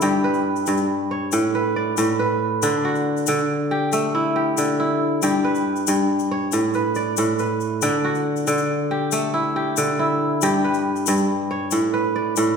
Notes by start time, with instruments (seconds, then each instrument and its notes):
Already playing: kora A3 E4
0.01 kora G2 G4, shaker
0.24 kora B4
0.34 shaker
0.56 shaker
0.66 kora G2, shaker
0.77 shaker
1.11 kora C#5
1.32 kora A2, shaker
1.55 kora B4
1.76 kora D5
1.97 kora A2, shaker
2.19 kora B4
2.62 kora D3 D4, shaker
2.85 kora F#4
2.95 shaker
3.17 shaker
3.27 kora D3, shaker
3.38 shaker
3.71 kora G4
3.92 kora A3, shaker
4.15 kora E4
4.36 kora G4
4.57 kora D3, shaker
4.80 kora E4
5.22 kora G2 G4, shaker
5.44 kora B4
5.55 shaker
5.76 shaker
5.87 kora G2, shaker
6.19 shaker
6.31 kora C#5
6.52 kora A2, shaker
6.74 kora B4, shaker
6.95 kora D5, shaker
7.17 kora A2, shaker
7.39 kora B4, shaker
7.61 shaker
7.82 kora D3 D4, shaker
8.05 kora F#4
8.15 shaker
8.36 shaker
8.47 kora D3, shaker
8.58 shaker
8.91 kora G4
9.12 kora A3, shaker
9.34 kora E4
9.56 kora G4
9.77 kora D3, shaker
9.99 kora E4
10.42 kora G2 G4, shaker
10.64 kora B4
10.74 shaker
10.96 shaker
11.06 kora G2, shaker
11.17 shaker
11.51 kora C#5
11.71 kora A2, shaker
11.94 kora B4
12.16 kora D5
12.36 kora A2, shaker